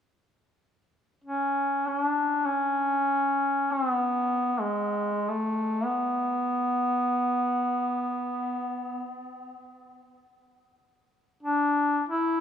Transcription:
1.24 1.88 C#4 medium
1.88 2.01 C#4 medium
2.01 2.47 D4 medium
2.46 3.73 C#4 medium
3.72 3.91 C4 medium
3.91 4.62 B3 medium
4.60 5.30 G#3 medium
5.29 5.87 A3 medium
5.85 9.19 B3 medium
11.43 12.03 D4 medium
12.09 12.40 E4 medium

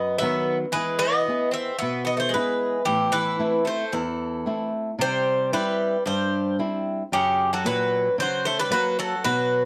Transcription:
0.00 0.20 F#2 medium
0.00 0.17 B3 medium
0.00 0.18 D#5 medium
0.18 0.64 F#3 medium
0.18 0.57 B3 medium
0.18 0.64 B3 soft
0.18 0.57 E5 medium
0.23 0.65 D#3 medium
0.72 1.26 E3 medium
0.72 0.98 G#3 medium
0.72 0.98 B4 medium
0.99 1.49 B3 medium
0.99 1.53 D#5 loud
1.28 1.71 B3 soft
1.28 1.71 E4 soft
1.28 1.71 G#4 medium
1.51 1.78 C4 medium
1.51 1.77 E5 medium
1.79 2.33 B2 medium
1.79 2.04 B3 medium
1.79 2.06 E5 medium
2.05 2.17 B3 medium
2.05 2.19 D#5 medium
2.17 2.31 A3 medium
2.17 2.33 C5 medium
2.29 2.81 G#3 medium
2.34 2.77 B3 medium
2.34 2.77 E4 soft
2.34 2.77 G#4 medium
2.34 2.83 B4 medium
2.85 3.39 A2 medium
2.85 3.11 E3 medium
2.85 3.14 G4 medium
3.12 3.62 E3 medium
3.12 3.67 B4 medium
3.39 3.82 A3 soft
3.39 3.83 C4 soft
3.39 3.83 E4 medium
3.65 3.91 A3 medium
3.65 3.92 C5 medium
3.92 4.45 E2 medium
3.92 4.69 E3 medium
3.92 4.69 A4 medium
4.46 4.89 A3 soft
4.46 4.89 C4 soft
4.46 4.89 E4 soft
4.99 5.51 C3 medium
4.99 5.50 G3 medium
4.99 5.50 C5 loud
5.52 5.95 G3 soft
5.52 6.03 G3 medium
5.52 5.95 C4 soft
5.52 5.96 E4 medium
5.52 6.03 B4 medium
6.06 6.58 G2 medium
6.06 6.55 G3 medium
6.06 6.56 C5 medium
6.59 7.02 G3 soft
6.59 7.02 C4 soft
6.59 7.02 E4 medium
7.12 7.64 F#2 medium
7.12 7.50 C#3 medium
7.12 7.50 G4 medium
7.53 7.65 F#3 medium
7.53 7.65 A4 medium
7.65 8.08 A#2 soft
7.65 8.08 F#3 soft
7.65 8.16 F#3 medium
7.65 8.08 C#4 medium
7.65 8.15 B4 medium
8.18 8.70 C#3 medium
8.18 8.45 F#3 medium
8.18 8.44 C5 medium
8.45 8.58 A3 medium
8.45 8.58 C5 medium
8.59 8.72 G3 medium
8.59 8.70 B4 medium
8.70 9.14 F#3 soft
8.70 8.97 F#3 medium
8.70 9.14 A#3 soft
8.70 9.14 C#4 medium
8.70 8.96 B4 medium
8.99 9.23 F#3 medium
8.99 9.24 A4 medium
9.24 9.65 B2 medium
9.24 9.62 F#3 medium
9.24 9.62 B4 loud

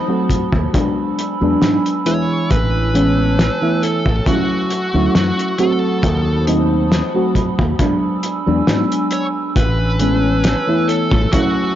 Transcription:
0.00 0.72 C5 medium
0.00 0.71 A5 medium
0.00 0.72 B5 medium
0.00 0.71 D#6 medium
0.08 0.68 F#3 medium
0.08 0.69 A3 medium
0.08 0.69 C4 medium
0.08 0.69 F#4 medium
0.30 kick medium
0.30 closed hi-hat medium
0.53 0.65 D#2 medium
0.53 kick loud
0.73 1.35 F#3 medium
0.73 1.35 G#3 medium
0.73 1.36 B3 medium
0.73 2.49 D4 medium
0.73 1.36 D4 medium
0.73 4.23 G#5 medium
0.73 2.48 B5 medium
0.73 5.55 E6 medium
0.73 kick loud
0.73 closed hi-hat medium
1.19 closed hi-hat medium
1.41 1.54 E2 loud
1.41 2.01 F#3 medium
1.41 2.01 G#3 medium
1.41 2.01 B3 medium
1.41 2.02 D4 medium
1.62 1.76 G#2 medium
1.62 snare loud
1.62 closed hi-hat medium
1.86 closed hi-hat medium
2.05 2.89 E3 medium
2.05 2.89 G#3 medium
2.05 2.89 B3 medium
2.05 2.89 E4 loud
2.05 2.51 C#5 loud
2.05 closed hi-hat medium
2.51 3.47 A1 medium
2.51 3.87 B4 loud
2.51 4.25 C#5 medium
2.51 4.25 A5 medium
2.51 kick loud
2.51 closed hi-hat medium
2.94 3.56 E3 medium
2.94 3.56 G#3 medium
2.94 3.56 B3 medium
2.94 3.57 C#4 medium
2.94 closed hi-hat medium
3.39 snare loud
3.39 closed hi-hat medium
3.61 4.21 E3 medium
3.61 4.22 A3 medium
3.61 4.22 B3 medium
3.61 4.22 E4 medium
3.83 4.24 A4 medium
3.83 closed hi-hat medium
4.06 4.18 A1 medium
4.06 kick loud
4.26 4.88 F#3 medium
4.26 4.89 A3 medium
4.26 4.89 C#4 medium
4.26 4.89 E4 medium
4.26 5.12 F#4 medium
4.26 5.58 F#5 medium
4.26 5.58 C#6 medium
4.26 kick loud
4.26 closed hi-hat medium
4.70 closed hi-hat medium
4.94 5.07 D2 loud
4.94 5.54 F#3 medium
4.94 5.54 A3 medium
4.94 5.54 C#4 medium
4.94 5.55 E4 medium
5.15 5.29 F#2 loud
5.15 5.59 F#4 medium
5.15 snare loud
5.15 closed hi-hat medium
5.39 closed hi-hat medium
5.58 6.42 F#3 medium
5.58 6.42 A3 medium
5.58 6.43 C4 medium
5.58 6.43 F#4 loud
5.58 6.43 A4 medium
5.58 7.78 C5 medium
5.58 7.77 A5 medium
5.58 9.52 B5 medium
5.58 7.77 D#6 medium
5.58 closed hi-hat medium
6.03 7.00 D#2 loud
6.03 kick loud
6.03 closed hi-hat medium
6.47 7.09 F#3 medium
6.47 7.09 A3 medium
6.47 7.09 C4 medium
6.47 7.10 D#4 loud
6.47 closed hi-hat medium
6.92 snare loud
6.92 closed hi-hat medium
7.14 7.74 F#3 medium
7.14 7.75 A3 medium
7.14 7.75 C4 medium
7.14 7.75 F#4 medium
7.35 kick medium
7.35 closed hi-hat medium
7.59 7.72 D#2 medium
7.59 kick loud
7.79 8.41 F#3 medium
7.79 8.42 G#3 medium
7.79 8.42 B3 medium
7.79 9.54 D4 medium
7.79 8.42 D4 medium
7.79 9.54 G#5 medium
7.79 9.54 E6 medium
7.79 kick loud
7.79 closed hi-hat medium
8.23 closed hi-hat medium
8.46 8.60 E2 loud
8.46 8.62 F#3 medium
8.46 8.63 G#3 medium
8.46 8.63 B3 medium
8.46 8.63 D4 medium
8.67 8.82 G#2 medium
8.67 9.53 F#3 medium
8.67 9.54 G#3 medium
8.67 9.54 B3 medium
8.67 9.54 D4 medium
8.67 snare loud
8.67 closed hi-hat medium
8.92 closed hi-hat medium
9.11 9.24 C#5 loud
9.11 closed hi-hat medium
9.56 10.53 A1 medium
9.56 10.93 B4 loud
9.56 11.31 C#5 medium
9.56 11.31 G#5 medium
9.56 11.31 A5 medium
9.56 11.75 E6 medium
9.56 kick loud
9.56 closed hi-hat medium
9.99 10.62 E3 medium
9.99 10.62 G#3 medium
9.99 10.62 B3 medium
9.99 10.62 C#4 loud
9.99 closed hi-hat medium
10.44 snare loud
10.44 closed hi-hat medium
10.67 11.27 E3 medium
10.67 11.28 A3 medium
10.67 11.28 B3 medium
10.67 11.28 E4 medium
10.88 11.32 A4 medium
10.88 closed hi-hat medium
11.12 11.24 A1 medium
11.12 kick loud
11.31 11.75 F#3 medium
11.31 11.75 A3 medium
11.31 11.75 C#4 medium
11.31 11.75 E4 medium
11.31 11.75 F#4 medium
11.31 11.75 F#5 medium
11.31 11.75 C#6 medium
11.31 kick loud
11.31 closed hi-hat medium

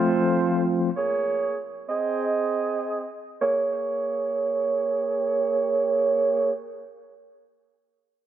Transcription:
0.00 0.88 F3 loud
0.00 0.64 A3 medium
0.00 0.89 A3 medium
0.00 0.89 C4 medium
0.00 0.64 F4 medium
0.00 0.89 F4 loud
0.00 0.64 C5 medium
0.97 1.57 A#3 medium
0.97 1.57 G#4 medium
0.97 1.57 C#5 medium
1.89 3.09 C4 medium
1.89 3.09 G#4 medium
1.89 3.09 D#5 medium
3.42 6.52 A#3 medium
3.42 6.52 G#4 medium
3.42 6.52 C#5 medium

